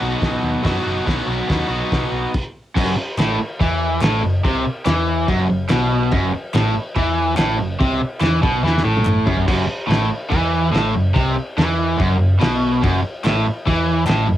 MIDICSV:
0, 0, Header, 1, 6, 480
1, 0, Start_track
1, 0, Tempo, 420168
1, 1218, Time_signature, 4, 2, 24, 8
1, 16422, End_track
2, 0, Start_track
2, 0, Title_t, "Overdriven electric guitar"
2, 0, Program_c, 0, 29
2, 0, Note_on_c, 0, 47, 99
2, 0, Note_on_c, 0, 54, 72
2, 0, Note_on_c, 0, 66, 65
2, 9, Note_on_c, 0, 63, 59
2, 27, Note_on_c, 0, 59, 50
2, 709, Note_off_c, 0, 47, 0
2, 714, Note_on_c, 0, 47, 78
2, 718, Note_off_c, 0, 59, 0
2, 721, Note_off_c, 0, 54, 0
2, 726, Note_on_c, 0, 54, 86
2, 732, Note_on_c, 0, 59, 81
2, 734, Note_off_c, 0, 63, 0
2, 743, Note_off_c, 0, 66, 0
2, 748, Note_on_c, 0, 63, 82
2, 757, Note_on_c, 0, 66, 98
2, 929, Note_off_c, 0, 66, 0
2, 943, Note_on_c, 0, 66, 75
2, 958, Note_off_c, 0, 63, 0
2, 971, Note_on_c, 0, 63, 64
2, 976, Note_off_c, 0, 59, 0
2, 990, Note_on_c, 0, 59, 52
2, 1189, Note_off_c, 0, 47, 0
2, 1201, Note_off_c, 0, 54, 0
2, 1202, Note_on_c, 0, 47, 89
2, 1213, Note_off_c, 0, 59, 0
2, 1215, Note_on_c, 0, 54, 87
2, 1225, Note_off_c, 0, 63, 0
2, 1227, Note_on_c, 0, 59, 93
2, 1233, Note_off_c, 0, 66, 0
2, 1238, Note_on_c, 0, 63, 100
2, 1246, Note_on_c, 0, 66, 89
2, 1432, Note_off_c, 0, 66, 0
2, 1445, Note_on_c, 0, 66, 66
2, 1452, Note_off_c, 0, 63, 0
2, 1466, Note_on_c, 0, 63, 70
2, 1475, Note_off_c, 0, 59, 0
2, 1488, Note_on_c, 0, 59, 61
2, 1676, Note_off_c, 0, 54, 0
2, 1690, Note_on_c, 0, 54, 66
2, 1691, Note_off_c, 0, 59, 0
2, 1693, Note_off_c, 0, 47, 0
2, 1703, Note_off_c, 0, 63, 0
2, 1705, Note_on_c, 0, 59, 78
2, 1717, Note_on_c, 0, 63, 83
2, 1719, Note_off_c, 0, 66, 0
2, 1732, Note_on_c, 0, 66, 74
2, 1908, Note_off_c, 0, 66, 0
2, 1922, Note_on_c, 0, 66, 68
2, 1928, Note_off_c, 0, 63, 0
2, 1942, Note_on_c, 0, 63, 54
2, 1949, Note_off_c, 0, 59, 0
2, 1963, Note_on_c, 0, 59, 53
2, 2178, Note_off_c, 0, 54, 0
2, 2641, Note_off_c, 0, 66, 0
2, 2651, Note_off_c, 0, 63, 0
2, 2661, Note_off_c, 0, 59, 0
2, 3147, Note_on_c, 0, 42, 118
2, 3381, Note_off_c, 0, 42, 0
2, 3641, Note_on_c, 0, 45, 102
2, 3868, Note_off_c, 0, 45, 0
2, 4118, Note_on_c, 0, 52, 106
2, 4587, Note_off_c, 0, 52, 0
2, 4600, Note_on_c, 0, 45, 102
2, 4828, Note_off_c, 0, 45, 0
2, 4831, Note_on_c, 0, 42, 72
2, 5022, Note_off_c, 0, 42, 0
2, 5077, Note_on_c, 0, 48, 115
2, 5306, Note_off_c, 0, 48, 0
2, 5550, Note_on_c, 0, 52, 111
2, 6023, Note_off_c, 0, 52, 0
2, 6040, Note_on_c, 0, 42, 108
2, 6268, Note_off_c, 0, 42, 0
2, 6282, Note_on_c, 0, 42, 69
2, 6468, Note_off_c, 0, 42, 0
2, 6506, Note_on_c, 0, 47, 98
2, 6980, Note_off_c, 0, 47, 0
2, 6993, Note_on_c, 0, 42, 117
2, 7224, Note_off_c, 0, 42, 0
2, 7474, Note_on_c, 0, 45, 109
2, 7704, Note_off_c, 0, 45, 0
2, 7958, Note_on_c, 0, 52, 102
2, 8409, Note_off_c, 0, 52, 0
2, 8413, Note_on_c, 0, 45, 98
2, 8654, Note_off_c, 0, 45, 0
2, 8658, Note_on_c, 0, 42, 81
2, 8855, Note_off_c, 0, 42, 0
2, 8908, Note_on_c, 0, 48, 112
2, 9141, Note_off_c, 0, 48, 0
2, 9376, Note_on_c, 0, 52, 105
2, 9615, Note_off_c, 0, 52, 0
2, 9622, Note_on_c, 0, 47, 105
2, 9858, Note_off_c, 0, 47, 0
2, 9872, Note_on_c, 0, 52, 101
2, 10099, Note_off_c, 0, 52, 0
2, 10104, Note_on_c, 0, 45, 87
2, 10578, Note_off_c, 0, 45, 0
2, 10580, Note_on_c, 0, 42, 102
2, 10811, Note_off_c, 0, 42, 0
2, 10825, Note_on_c, 0, 42, 103
2, 11042, Note_off_c, 0, 42, 0
2, 11283, Note_on_c, 0, 45, 105
2, 11528, Note_off_c, 0, 45, 0
2, 11763, Note_on_c, 0, 52, 114
2, 12239, Note_off_c, 0, 52, 0
2, 12243, Note_on_c, 0, 45, 96
2, 12487, Note_off_c, 0, 45, 0
2, 12505, Note_on_c, 0, 42, 76
2, 12697, Note_off_c, 0, 42, 0
2, 12727, Note_on_c, 0, 48, 113
2, 12969, Note_off_c, 0, 48, 0
2, 13224, Note_on_c, 0, 52, 108
2, 13682, Note_on_c, 0, 42, 107
2, 13696, Note_off_c, 0, 52, 0
2, 13915, Note_off_c, 0, 42, 0
2, 13929, Note_on_c, 0, 42, 66
2, 14127, Note_off_c, 0, 42, 0
2, 14166, Note_on_c, 0, 47, 91
2, 14646, Note_off_c, 0, 47, 0
2, 14652, Note_on_c, 0, 42, 118
2, 14867, Note_off_c, 0, 42, 0
2, 15126, Note_on_c, 0, 45, 109
2, 15365, Note_off_c, 0, 45, 0
2, 15612, Note_on_c, 0, 52, 106
2, 16065, Note_off_c, 0, 52, 0
2, 16070, Note_on_c, 0, 45, 90
2, 16306, Note_on_c, 0, 42, 69
2, 16314, Note_off_c, 0, 45, 0
2, 16422, Note_off_c, 0, 42, 0
2, 16422, End_track
3, 0, Start_track
3, 0, Title_t, "Picked electric bass"
3, 0, Program_c, 1, 34
3, 18, Note_on_c, 1, 35, 83
3, 161, Note_off_c, 1, 35, 0
3, 245, Note_on_c, 1, 35, 90
3, 392, Note_off_c, 1, 35, 0
3, 491, Note_on_c, 1, 39, 80
3, 637, Note_off_c, 1, 39, 0
3, 742, Note_on_c, 1, 42, 93
3, 885, Note_off_c, 1, 42, 0
3, 986, Note_on_c, 1, 30, 86
3, 1129, Note_off_c, 1, 30, 0
3, 1224, Note_on_c, 1, 35, 92
3, 1367, Note_off_c, 1, 35, 0
3, 1456, Note_on_c, 1, 35, 83
3, 1602, Note_off_c, 1, 35, 0
3, 1714, Note_on_c, 1, 39, 85
3, 1855, Note_off_c, 1, 39, 0
3, 1928, Note_on_c, 1, 35, 80
3, 2078, Note_off_c, 1, 35, 0
3, 2195, Note_on_c, 1, 35, 82
3, 2337, Note_off_c, 1, 35, 0
3, 2420, Note_on_c, 1, 35, 80
3, 2567, Note_off_c, 1, 35, 0
3, 3167, Note_on_c, 1, 30, 98
3, 3382, Note_off_c, 1, 30, 0
3, 3629, Note_on_c, 1, 33, 85
3, 3853, Note_off_c, 1, 33, 0
3, 4121, Note_on_c, 1, 40, 94
3, 4563, Note_off_c, 1, 40, 0
3, 4585, Note_on_c, 1, 33, 110
3, 4811, Note_off_c, 1, 33, 0
3, 4848, Note_on_c, 1, 30, 88
3, 5063, Note_off_c, 1, 30, 0
3, 5075, Note_on_c, 1, 36, 99
3, 5296, Note_off_c, 1, 36, 0
3, 5560, Note_on_c, 1, 40, 100
3, 6001, Note_off_c, 1, 40, 0
3, 6041, Note_on_c, 1, 30, 98
3, 6259, Note_off_c, 1, 30, 0
3, 6288, Note_on_c, 1, 30, 82
3, 6502, Note_off_c, 1, 30, 0
3, 6529, Note_on_c, 1, 35, 103
3, 6966, Note_off_c, 1, 35, 0
3, 7004, Note_on_c, 1, 30, 96
3, 7220, Note_off_c, 1, 30, 0
3, 7476, Note_on_c, 1, 33, 102
3, 7696, Note_off_c, 1, 33, 0
3, 7965, Note_on_c, 1, 40, 109
3, 8404, Note_off_c, 1, 40, 0
3, 8433, Note_on_c, 1, 33, 110
3, 8654, Note_off_c, 1, 33, 0
3, 8669, Note_on_c, 1, 30, 81
3, 8892, Note_off_c, 1, 30, 0
3, 8917, Note_on_c, 1, 36, 98
3, 9136, Note_off_c, 1, 36, 0
3, 9387, Note_on_c, 1, 40, 93
3, 9611, Note_off_c, 1, 40, 0
3, 9641, Note_on_c, 1, 35, 87
3, 9855, Note_off_c, 1, 35, 0
3, 9862, Note_on_c, 1, 40, 98
3, 10088, Note_off_c, 1, 40, 0
3, 10107, Note_on_c, 1, 33, 93
3, 10554, Note_off_c, 1, 33, 0
3, 10584, Note_on_c, 1, 30, 88
3, 10809, Note_off_c, 1, 30, 0
3, 10833, Note_on_c, 1, 30, 100
3, 11054, Note_off_c, 1, 30, 0
3, 11305, Note_on_c, 1, 33, 102
3, 11529, Note_off_c, 1, 33, 0
3, 11793, Note_on_c, 1, 40, 90
3, 12236, Note_off_c, 1, 40, 0
3, 12260, Note_on_c, 1, 33, 107
3, 12486, Note_off_c, 1, 33, 0
3, 12513, Note_on_c, 1, 30, 84
3, 12733, Note_off_c, 1, 30, 0
3, 12749, Note_on_c, 1, 36, 104
3, 12970, Note_off_c, 1, 36, 0
3, 13224, Note_on_c, 1, 40, 97
3, 13670, Note_off_c, 1, 40, 0
3, 13709, Note_on_c, 1, 30, 95
3, 13926, Note_off_c, 1, 30, 0
3, 13933, Note_on_c, 1, 30, 89
3, 14160, Note_off_c, 1, 30, 0
3, 14192, Note_on_c, 1, 35, 109
3, 14633, Note_off_c, 1, 35, 0
3, 14678, Note_on_c, 1, 30, 105
3, 14893, Note_off_c, 1, 30, 0
3, 15133, Note_on_c, 1, 33, 94
3, 15359, Note_off_c, 1, 33, 0
3, 15628, Note_on_c, 1, 40, 102
3, 16068, Note_off_c, 1, 40, 0
3, 16093, Note_on_c, 1, 33, 105
3, 16316, Note_off_c, 1, 33, 0
3, 16335, Note_on_c, 1, 30, 89
3, 16422, Note_off_c, 1, 30, 0
3, 16422, End_track
4, 0, Start_track
4, 0, Title_t, "Muted overdriven electric guitar strokes"
4, 3398, Note_on_c, 9, 29, 55
4, 3512, Note_off_c, 9, 29, 0
4, 3885, Note_on_c, 9, 29, 59
4, 3999, Note_off_c, 9, 29, 0
4, 5309, Note_on_c, 9, 29, 61
4, 5424, Note_off_c, 9, 29, 0
4, 7245, Note_on_c, 9, 29, 64
4, 7359, Note_off_c, 9, 29, 0
4, 7700, Note_on_c, 9, 29, 52
4, 7814, Note_off_c, 9, 29, 0
4, 9156, Note_on_c, 9, 29, 62
4, 9270, Note_off_c, 9, 29, 0
4, 11056, Note_on_c, 9, 29, 66
4, 11170, Note_off_c, 9, 29, 0
4, 11527, Note_on_c, 9, 29, 57
4, 11641, Note_off_c, 9, 29, 0
4, 12977, Note_on_c, 9, 29, 66
4, 13091, Note_off_c, 9, 29, 0
4, 14881, Note_on_c, 9, 29, 65
4, 14995, Note_off_c, 9, 29, 0
4, 15379, Note_on_c, 9, 29, 62
4, 15493, Note_off_c, 9, 29, 0
4, 16422, End_track
5, 0, Start_track
5, 0, Title_t, "Muted picked electric bass strokes"
5, 3862, Note_on_c, 9, 29, 38
5, 3977, Note_off_c, 9, 29, 0
5, 5321, Note_on_c, 9, 29, 42
5, 5435, Note_off_c, 9, 29, 0
5, 9156, Note_on_c, 9, 29, 43
5, 9270, Note_off_c, 9, 29, 0
5, 11075, Note_on_c, 9, 29, 38
5, 11189, Note_off_c, 9, 29, 0
5, 12987, Note_on_c, 9, 29, 41
5, 13101, Note_off_c, 9, 29, 0
5, 14909, Note_on_c, 9, 29, 44
5, 15024, Note_off_c, 9, 29, 0
5, 16422, End_track
6, 0, Start_track
6, 0, Title_t, "Drums"
6, 248, Note_on_c, 9, 46, 45
6, 251, Note_on_c, 9, 36, 85
6, 264, Note_on_c, 9, 38, 103
6, 362, Note_off_c, 9, 46, 0
6, 365, Note_off_c, 9, 36, 0
6, 378, Note_off_c, 9, 38, 0
6, 741, Note_on_c, 9, 46, 56
6, 742, Note_on_c, 9, 36, 114
6, 756, Note_on_c, 9, 38, 121
6, 855, Note_off_c, 9, 46, 0
6, 856, Note_off_c, 9, 36, 0
6, 871, Note_off_c, 9, 38, 0
6, 1228, Note_on_c, 9, 36, 99
6, 1231, Note_on_c, 9, 46, 51
6, 1247, Note_on_c, 9, 38, 97
6, 1342, Note_off_c, 9, 36, 0
6, 1345, Note_off_c, 9, 46, 0
6, 1361, Note_off_c, 9, 38, 0
6, 1713, Note_on_c, 9, 36, 99
6, 1713, Note_on_c, 9, 46, 51
6, 1729, Note_on_c, 9, 38, 108
6, 1827, Note_off_c, 9, 36, 0
6, 1827, Note_off_c, 9, 46, 0
6, 1843, Note_off_c, 9, 38, 0
6, 2191, Note_on_c, 9, 46, 44
6, 2195, Note_on_c, 9, 36, 95
6, 2207, Note_on_c, 9, 38, 94
6, 2305, Note_off_c, 9, 46, 0
6, 2309, Note_off_c, 9, 36, 0
6, 2321, Note_off_c, 9, 38, 0
6, 2674, Note_on_c, 9, 49, 100
6, 2678, Note_on_c, 9, 36, 113
6, 2788, Note_off_c, 9, 49, 0
6, 2793, Note_off_c, 9, 36, 0
6, 3160, Note_on_c, 9, 36, 109
6, 3166, Note_on_c, 9, 49, 125
6, 3166, Note_on_c, 9, 57, 68
6, 3274, Note_off_c, 9, 36, 0
6, 3280, Note_off_c, 9, 49, 0
6, 3280, Note_off_c, 9, 57, 0
6, 3637, Note_on_c, 9, 39, 81
6, 3639, Note_on_c, 9, 57, 66
6, 3655, Note_on_c, 9, 38, 109
6, 3751, Note_off_c, 9, 39, 0
6, 3754, Note_off_c, 9, 57, 0
6, 3770, Note_off_c, 9, 38, 0
6, 4119, Note_on_c, 9, 36, 83
6, 4128, Note_on_c, 9, 57, 56
6, 4234, Note_off_c, 9, 36, 0
6, 4242, Note_off_c, 9, 57, 0
6, 4586, Note_on_c, 9, 39, 88
6, 4599, Note_on_c, 9, 57, 75
6, 4615, Note_on_c, 9, 38, 127
6, 4701, Note_off_c, 9, 39, 0
6, 4714, Note_off_c, 9, 57, 0
6, 4730, Note_off_c, 9, 38, 0
6, 5080, Note_on_c, 9, 36, 116
6, 5090, Note_on_c, 9, 57, 57
6, 5194, Note_off_c, 9, 36, 0
6, 5205, Note_off_c, 9, 57, 0
6, 5547, Note_on_c, 9, 57, 62
6, 5551, Note_on_c, 9, 39, 89
6, 5563, Note_on_c, 9, 38, 123
6, 5661, Note_off_c, 9, 57, 0
6, 5665, Note_off_c, 9, 39, 0
6, 5677, Note_off_c, 9, 38, 0
6, 6033, Note_on_c, 9, 57, 55
6, 6035, Note_on_c, 9, 36, 85
6, 6148, Note_off_c, 9, 57, 0
6, 6149, Note_off_c, 9, 36, 0
6, 6496, Note_on_c, 9, 57, 73
6, 6508, Note_on_c, 9, 39, 95
6, 6512, Note_on_c, 9, 38, 125
6, 6610, Note_off_c, 9, 57, 0
6, 6622, Note_off_c, 9, 39, 0
6, 6626, Note_off_c, 9, 38, 0
6, 6985, Note_on_c, 9, 57, 64
6, 6997, Note_on_c, 9, 36, 109
6, 7099, Note_off_c, 9, 57, 0
6, 7111, Note_off_c, 9, 36, 0
6, 7473, Note_on_c, 9, 39, 87
6, 7476, Note_on_c, 9, 57, 66
6, 7492, Note_on_c, 9, 38, 114
6, 7587, Note_off_c, 9, 39, 0
6, 7591, Note_off_c, 9, 57, 0
6, 7607, Note_off_c, 9, 38, 0
6, 7944, Note_on_c, 9, 57, 57
6, 7956, Note_on_c, 9, 36, 94
6, 8058, Note_off_c, 9, 57, 0
6, 8070, Note_off_c, 9, 36, 0
6, 8419, Note_on_c, 9, 39, 91
6, 8424, Note_on_c, 9, 57, 76
6, 8440, Note_on_c, 9, 38, 127
6, 8534, Note_off_c, 9, 39, 0
6, 8539, Note_off_c, 9, 57, 0
6, 8555, Note_off_c, 9, 38, 0
6, 8919, Note_on_c, 9, 36, 108
6, 8924, Note_on_c, 9, 57, 58
6, 9033, Note_off_c, 9, 36, 0
6, 9038, Note_off_c, 9, 57, 0
6, 9375, Note_on_c, 9, 39, 79
6, 9393, Note_on_c, 9, 57, 55
6, 9409, Note_on_c, 9, 38, 116
6, 9490, Note_off_c, 9, 39, 0
6, 9507, Note_off_c, 9, 57, 0
6, 9523, Note_off_c, 9, 38, 0
6, 9636, Note_on_c, 9, 36, 119
6, 9750, Note_off_c, 9, 36, 0
6, 9899, Note_on_c, 9, 38, 55
6, 10013, Note_off_c, 9, 38, 0
6, 10028, Note_on_c, 9, 38, 66
6, 10142, Note_off_c, 9, 38, 0
6, 10248, Note_on_c, 9, 48, 70
6, 10343, Note_on_c, 9, 39, 98
6, 10353, Note_on_c, 9, 47, 93
6, 10362, Note_off_c, 9, 48, 0
6, 10458, Note_off_c, 9, 39, 0
6, 10467, Note_off_c, 9, 47, 0
6, 10589, Note_on_c, 9, 43, 115
6, 10703, Note_off_c, 9, 43, 0
6, 10704, Note_on_c, 9, 43, 100
6, 10818, Note_off_c, 9, 43, 0
6, 10829, Note_on_c, 9, 36, 115
6, 10831, Note_on_c, 9, 49, 108
6, 10831, Note_on_c, 9, 57, 68
6, 10943, Note_off_c, 9, 36, 0
6, 10945, Note_off_c, 9, 49, 0
6, 10945, Note_off_c, 9, 57, 0
6, 11315, Note_on_c, 9, 57, 69
6, 11331, Note_on_c, 9, 38, 114
6, 11429, Note_off_c, 9, 57, 0
6, 11445, Note_off_c, 9, 38, 0
6, 11783, Note_on_c, 9, 57, 59
6, 11788, Note_on_c, 9, 36, 96
6, 11898, Note_off_c, 9, 57, 0
6, 11902, Note_off_c, 9, 36, 0
6, 12274, Note_on_c, 9, 57, 70
6, 12290, Note_on_c, 9, 38, 127
6, 12388, Note_off_c, 9, 57, 0
6, 12404, Note_off_c, 9, 38, 0
6, 12748, Note_on_c, 9, 36, 115
6, 12754, Note_on_c, 9, 57, 61
6, 12863, Note_off_c, 9, 36, 0
6, 12869, Note_off_c, 9, 57, 0
6, 13227, Note_on_c, 9, 57, 66
6, 13243, Note_on_c, 9, 38, 112
6, 13341, Note_off_c, 9, 57, 0
6, 13357, Note_off_c, 9, 38, 0
6, 13702, Note_on_c, 9, 57, 55
6, 13707, Note_on_c, 9, 36, 98
6, 13816, Note_off_c, 9, 57, 0
6, 13821, Note_off_c, 9, 36, 0
6, 14179, Note_on_c, 9, 57, 73
6, 14195, Note_on_c, 9, 38, 126
6, 14293, Note_off_c, 9, 57, 0
6, 14309, Note_off_c, 9, 38, 0
6, 14662, Note_on_c, 9, 57, 67
6, 14667, Note_on_c, 9, 36, 111
6, 14776, Note_off_c, 9, 57, 0
6, 14782, Note_off_c, 9, 36, 0
6, 15133, Note_on_c, 9, 39, 92
6, 15138, Note_on_c, 9, 57, 68
6, 15154, Note_on_c, 9, 38, 122
6, 15247, Note_off_c, 9, 39, 0
6, 15252, Note_off_c, 9, 57, 0
6, 15268, Note_off_c, 9, 38, 0
6, 15618, Note_on_c, 9, 36, 96
6, 15621, Note_on_c, 9, 57, 62
6, 15732, Note_off_c, 9, 36, 0
6, 15735, Note_off_c, 9, 57, 0
6, 16072, Note_on_c, 9, 39, 97
6, 16087, Note_on_c, 9, 57, 69
6, 16103, Note_on_c, 9, 38, 125
6, 16186, Note_off_c, 9, 39, 0
6, 16202, Note_off_c, 9, 57, 0
6, 16218, Note_off_c, 9, 38, 0
6, 16422, End_track
0, 0, End_of_file